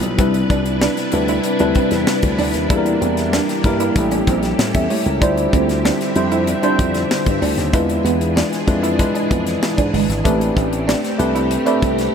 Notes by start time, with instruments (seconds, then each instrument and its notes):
Already playing: string machine F3 G3 B4, tine electric piano G3 B3 E4 F4 A4
0.02 slap bass B1, closed hi-hat
0.18 slap bass C2, string machine C3 D4 E4, tine electric piano G3 C4 D4 E4 B4, clean electric guitar C4, kick, closed hi-hat
0.34 muted clean electric guitar stroke, closed hi-hat
0.50 slap bass C2, clean electric guitar D4, kick, closed hi-hat
0.66 closed hi-hat
0.81 clean electric guitar D4, snare
0.97 snare, closed hi-hat
1.12 slap bass D2, tine electric piano G3 C4 D4 E4 B4, muted clean electric guitar stroke, closed hi-hat
1.28 clean electric guitar E4, closed hi-hat
1.44 muted clean electric guitar stroke, closed hi-hat
1.59 slap bass D2, tine electric piano G3 C4 D4 E4 B4, clean electric guitar D4, closed hi-hat
1.75 clean electric guitar C4, kick, closed hi-hat
1.91 slap bass E2, snare, closed hi-hat
2.07 snare
2.22 slap bass D2, kick, closed hi-hat
2.39 slap bass D2, clean electric guitar D4, open hi-hat
2.54 slap bass D#2, snare, closed hi-hat
2.70 slap bass E2, string machine E3 A#3 G4, tine electric piano G3 A#3 D4 E4 A4, clean electric guitar E4, kick, closed hi-hat
2.77 tine electric piano A#4
2.86 muted clean electric guitar stroke, closed hi-hat
3.01 slap bass E2, clean electric guitar C4, closed hi-hat
3.17 snare, closed hi-hat
3.33 clean electric guitar D4, snare
3.49 snare, closed hi-hat
3.64 slap bass G2, tine electric piano G3 A#3 D4 E4 A#4, muted clean electric guitar stroke, kick, closed hi-hat
3.80 clean electric guitar E4, closed hi-hat
3.95 slap bass A1, tine electric piano G3 A#3 C#4 E4 A4, string machine C#4 A4, muted clean electric guitar stroke, kick, closed hi-hat
4.11 clean electric guitar C#4, closed hi-hat
4.27 slap bass A#1, clean electric guitar C4, kick, closed hi-hat
4.43 snare, closed hi-hat
4.59 slap bass A2, muted clean electric guitar stroke, snare
4.75 slap bass E2, clean electric guitar C#4, tine electric piano G4 E5, kick, closed hi-hat
4.90 clean electric guitar A3, tine electric piano E4 C#5, open hi-hat
5.06 slap bass C#2, tine electric piano C#4 A#4, closed hi-hat
5.21 slap bass D2, string machine D3 C4 E5, tine electric piano G3 D4 E4 F4 C5, clean electric guitar D4, kick, closed hi-hat
5.37 muted clean electric guitar stroke, closed hi-hat
5.53 slap bass D2, clean electric guitar C4, kick, closed hi-hat
5.69 snare, closed hi-hat
5.85 clean electric guitar D4, snare
6.01 snare, closed hi-hat
6.15 slap bass F2, tine electric piano G3 D4 E4 F4 C5, muted clean electric guitar stroke, closed hi-hat
6.32 clean electric guitar E4, closed hi-hat
6.47 muted clean electric guitar stroke, closed hi-hat
6.62 tine electric piano G3 D4 E4 F4 C5, clean electric guitar D4, closed hi-hat
6.79 slap bass F2, clean electric guitar C4, kick, closed hi-hat
6.94 snare, closed hi-hat
7.11 snare
7.26 slap bass G2, kick, closed hi-hat
7.42 slap bass D2, clean electric guitar D4, open hi-hat
7.57 slap bass D#2, snare, closed hi-hat
7.73 slap bass E2, string machine E3 D4 G#4, tine electric piano G#3 D4 E4 F4 B4, clean electric guitar E4, kick, closed hi-hat
7.89 muted clean electric guitar stroke, closed hi-hat
8.04 slap bass E2, clean electric guitar B3, closed hi-hat
8.21 closed hi-hat
8.36 clean electric guitar D4, snare
8.53 snare, closed hi-hat
8.67 slap bass F2, tine electric piano G#3 D4 E4 F4 B4, muted clean electric guitar stroke, kick, closed hi-hat
8.83 clean electric guitar E4, closed hi-hat
8.99 tine electric piano G#3 D4 E4 F4 B4, muted clean electric guitar stroke, kick, closed hi-hat
9.15 clean electric guitar D4, closed hi-hat
9.31 slap bass F2, clean electric guitar B3, kick, closed hi-hat
9.47 snare, closed hi-hat
9.62 muted clean electric guitar stroke, snare
9.78 slap bass G#2, clean electric guitar D4, kick, closed hi-hat
9.93 slap bass G1, clean electric guitar G#3, open hi-hat
10.09 slap bass G#1, snare, closed hi-hat
10.24 slap bass A1, tine electric piano A3 C4 D4 G4 B4, string machine A3 C4 G4, clean electric guitar A3, kick, closed hi-hat
10.41 muted clean electric guitar stroke, closed hi-hat
10.56 slap bass A1, clean electric guitar C4, kick, closed hi-hat
10.73 closed hi-hat
10.88 clean electric guitar D4, snare
11.04 snare, closed hi-hat
11.18 slap bass C2, tine electric piano A3 C4 D4 G4 B4, muted clean electric guitar stroke, closed hi-hat
11.35 clean electric guitar E4, closed hi-hat
11.51 muted clean electric guitar stroke, closed hi-hat
11.66 tine electric piano A3 C4 D4 G4 B4, clean electric guitar D4, closed hi-hat
11.82 slap bass C2, clean electric guitar C4, kick, closed hi-hat
11.98 snare, closed hi-hat